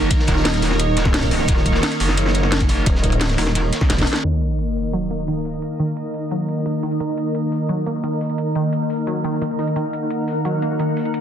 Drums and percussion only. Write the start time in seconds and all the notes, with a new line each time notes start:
0.11 kick, closed hi-hat, ride
0.19 snare
0.27 kick, snare, closed hi-hat, ride
0.37 snare
0.45 snare, closed hi-hat, ride
0.54 snare, closed hi-hat
0.62 snare, open hi-hat, ride
0.71 snare
0.79 closed hi-hat, ride
0.97 snare, closed hi-hat, ride
1.05 kick, snare
1.14 snare, closed hi-hat, open hi-hat
1.23 kick, closed hi-hat
1.31 snare, open hi-hat, ride
1.40 snare, ride
1.48 kick, closed hi-hat, ride
1.57 snare
1.66 kick, closed hi-hat, ride
1.74 snare
1.83 snare, closed hi-hat, ride
1.92 closed hi-hat, ride
2.00 open hi-hat, ride
2.09 snare
2.17 closed hi-hat, ride
2.26 snare
2.35 closed hi-hat, ride
2.43 snare
2.52 snare, closed hi-hat, ride
2.60 kick, snare, closed hi-hat
2.69 open hi-hat, ride
2.86 kick, closed hi-hat, ride
2.95 snare
3.04 kick, closed hi-hat
3.12 closed hi-hat
3.21 snare, closed hi-hat, ride
3.29 snare, closed hi-hat
3.38 snare, open hi-hat, ride
3.47 snare
3.55 closed hi-hat, ride
3.73 snare, closed hi-hat, ride
3.81 kick, snare
3.90 snare, closed hi-hat, ride
3.98 kick, snare, closed hi-hat, ride
4.07 open hi-hat, ride
4.13 snare
4.15 snare, closed hi-hat, ride
4.24 closed hi-hat
4.42 closed hi-hat
4.59 closed hi-hat
4.76 open hi-hat
4.93 closed hi-hat
5.11 closed hi-hat
5.28 closed hi-hat
5.45 open hi-hat
5.54 closed hi-hat
5.62 closed hi-hat
5.80 closed hi-hat
5.97 closed hi-hat
6.14 open hi-hat
6.31 closed hi-hat
6.49 closed hi-hat
6.66 closed hi-hat
6.83 open hi-hat
6.92 closed hi-hat
7.00 closed hi-hat
7.18 closed hi-hat
7.35 closed hi-hat
7.52 open hi-hat
7.69 closed hi-hat
7.86 closed hi-hat
8.04 closed hi-hat
8.21 open hi-hat
8.30 closed hi-hat
8.38 closed hi-hat
8.55 closed hi-hat
8.73 closed hi-hat
8.90 open hi-hat
9.07 closed hi-hat
9.24 closed hi-hat
9.42 closed hi-hat
9.59 open hi-hat
9.67 closed hi-hat
9.76 closed hi-hat
9.93 closed hi-hat
10.11 closed hi-hat
10.28 open hi-hat
10.45 closed hi-hat
10.62 closed hi-hat
10.80 closed hi-hat
10.97 open hi-hat
11.05 closed hi-hat
11.14 closed hi-hat